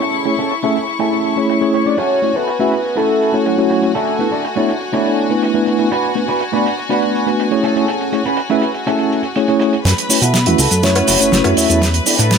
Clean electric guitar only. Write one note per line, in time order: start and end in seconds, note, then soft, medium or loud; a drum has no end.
0.00 0.26 C#4 medium
0.00 0.26 G#4 medium
0.00 0.26 A4 medium
0.38 0.51 C#4 medium
0.38 0.51 G#4 medium
0.38 0.51 A4 medium
0.63 0.81 C#4 medium
0.63 0.82 G#4 medium
0.63 0.82 A4 medium
1.00 1.37 C#4 medium
1.00 1.37 G#4 medium
1.00 1.37 A4 medium
1.74 muted clean electric guitar stroke soft
1.98 2.16 E4 medium
1.98 2.17 F#4 medium
1.98 2.17 A4 loud
2.35 2.47 E4 medium
2.35 2.47 F#4 medium
2.35 2.48 A4 medium
2.60 2.78 E4 medium
2.60 2.78 F#4 medium
2.60 2.78 G#4 medium
2.96 3.33 E4 medium
2.96 3.34 F#4 medium
2.96 3.34 A4 medium
3.70 muted clean electric guitar stroke soft
3.94 4.13 D4 loud
3.94 4.13 E4 medium
3.94 4.13 A4 loud
4.31 4.44 D4 medium
4.31 4.44 E4 medium
4.31 4.44 A4 medium
4.56 4.75 D4 medium
4.56 4.75 E4 medium
4.56 4.75 A4 medium
4.93 5.30 D4 medium
4.93 5.30 E4 medium
4.93 5.30 A4 medium
5.67 muted clean electric guitar stroke soft
5.91 6.10 D4 loud
5.91 6.10 F#4 medium
5.91 6.10 B4 loud
6.28 6.40 D4 medium
6.28 6.41 F#4 medium
6.28 6.41 B4 medium
6.53 6.71 D4 medium
6.53 6.71 F#4 medium
6.53 6.72 B4 medium
6.89 7.27 D4 medium
6.89 7.27 F#4 medium
6.89 7.27 B4 medium
7.63 8.13 C#4 medium
7.63 8.13 G#4 medium
7.63 8.13 A4 medium
8.25 8.38 C#4 medium
8.25 8.38 G#4 medium
8.25 8.38 B4 medium
8.50 8.68 C#4 medium
8.50 8.68 G#4 medium
8.50 8.68 B4 medium
8.87 9.24 C#4 medium
8.87 9.24 G#4 medium
8.87 9.24 A4 medium
9.60 muted clean electric guitar stroke soft
10.22 10.34 E4 medium
10.22 10.34 F#4 medium
10.22 10.34 A4 loud
10.47 10.65 E4 medium
10.47 10.65 F#4 medium
10.47 10.65 B4 medium
10.83 muted clean electric guitar stroke soft
11.08 11.26 E4 loud
11.08 11.27 F#4 loud
11.08 11.27 A4 loud
11.45 11.82 E4 medium
11.45 11.82 F#4 medium
11.45 11.82 A4 medium
12.19 12.31 D4 loud
12.19 12.31 E4 medium
12.19 12.31 A4 loud